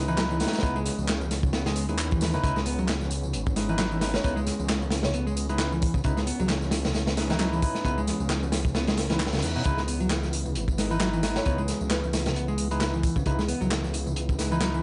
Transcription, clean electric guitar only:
0.08 E3
0.18 F#3
0.31 E3
0.63 B3
0.76 G#3
1.54 B3
1.66 G#3
1.89 G#3
2.12 E3
2.34 C#3
2.44 C#3
2.56 G#3
2.66 B3
2.79 F#3
3.56 G#3
3.69 E3
3.79 F#3
3.91 E3
4.24 B3
4.36 G#3
5.14 B3
5.27 G#3
5.49 G#3
5.72 E3
5.94 C#3
6.04 C#3
6.17 G#3
6.27 B3
6.40 F#3
7.17 G#3
7.30 E3
7.39 F#3
7.52 E3
7.85 B3
7.98 G#3
8.75 B3
8.88 G#3
9.11 E3
9.33 C#3
9.56 B2
9.65 C#3
9.78 G#3
9.88 B3
10.00 F#3
10.78 G#3
10.91 E3
11.00 F#3
11.13 E3
11.46 B3
11.58 G#3
12.36 B3
12.48 G#3
12.71 G#3
12.94 E3
13.16 C#3
13.26 C#3
13.39 G#3
13.48 B3
13.61 F#3
14.39 G#3
14.51 E3
14.61 F#3
14.74 E3

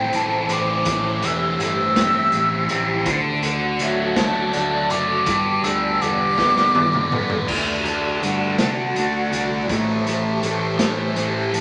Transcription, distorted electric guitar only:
Already playing: A2 E3 A3 C4
0.14 E3
0.52 C4
0.87 A2
1.24 E3
1.60 A3
1.97 C4
2.34 E3
2.70 C4
3.08 D3
3.43 D3
3.81 F#3
4.16 A3
4.54 D3
4.91 A3
5.27 G2
5.64 D3
6.01 G3
6.38 B3
6.73 D3
7.12 B3
7.47 D3 A3 D4
7.84 A3 D4
8.21 D3 A3 D4
8.58 A3 D4
8.95 D3 A3 D4
9.31 A3 D4
9.67 A2 E3
9.71 A3
10.04 E3 A3
10.41 A2 E3 A3
10.78 E3 A3
11.14 A2 E3 A3
11.51 E3 A3

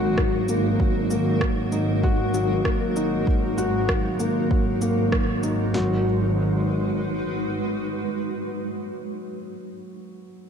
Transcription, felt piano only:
Already playing: F#3 A#3 D#4 F#4
0.18 F#3
0.49 A#3
0.79 F#3
1.10 A#3
1.72 D#4
2.04 F#4
2.34 F#3
2.65 A#3
2.96 D#4
3.58 F#4
3.88 F#3
4.19 A#3
4.51 F#3
4.82 A#3
5.43 D#4
5.75 F#3

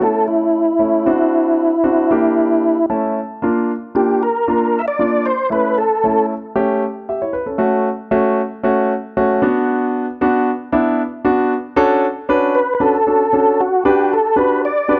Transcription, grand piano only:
0.01 A3 C#4 E4
0.79 A3 C#4 E4
1.06 C4 D4 F#4
1.84 C4 D4 F#4
2.11 A#3 D4 G4
2.90 A3 C#4 E4 A5
3.42 A#3 D4 F4
3.95 A#3 D4 F4
4.48 A#3 D4 F4
4.99 A#3 D4 F4
5.50 A3 C#4 E4
6.04 A3 C#4 E4
6.55 A3 C#4 G4
7.09 G4 E5
7.22 E4 C#5
7.33 B4
7.46 C#4 A4
7.58 A3 C#4 F#4
8.11 A3 C#4 F#4
8.63 A3 C#4 F#4
9.17 A3 C#4 F#4
9.42 B3 D4 F#4
10.21 B3 D4 F#4
10.72 B3 D4 E4
11.25 B3 D4 F#4
11.76 C#4 D4 F#4 A4
12.29 C#4 D4 F#4 B4
12.80 C#4 D4 F#4 B4
13.07 C#4 D4 F#4 A4
13.33 C#4 D4 F#4 A4
13.85 D4 F#4 G4 B4
14.36 D4 F#4 G4 B4
14.88 D4 F#4 G4 B4

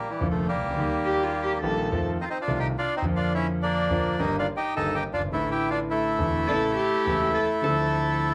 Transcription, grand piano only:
0.20 F1 F2 D3 F3 A#3 F4
0.57 C2
0.63 C#2
0.71 D2
0.76 D#2 D#3 G3 A#3
0.80 G4
1.63 A#1 A#2 D#3 G3 A#3 G4
1.91 F2 D#3 F3 A3 C4 F4
2.47 C2 C3 D#3 A3 C4 F4
3.02 F2 D3 F3 A#3
3.06 F4
3.90 F2 D3 F3 A#3 F4
4.19 G1 G2 D#3 G3 A#3 G4
4.76 G1 G2 D#3 G3 A#3 G4
5.13 F#1
5.20 G1
5.26 G#1
5.31 A1 A2 D3 E3 A3
5.35 E4
6.19 E1 E2 D3 E3 A3 E4
6.48 A1 A2 C#3 E3 A3 E4
7.06 E1 E2 C#3 E3 A3 E4
7.62 D2 D3 F3 A3
7.66 D4

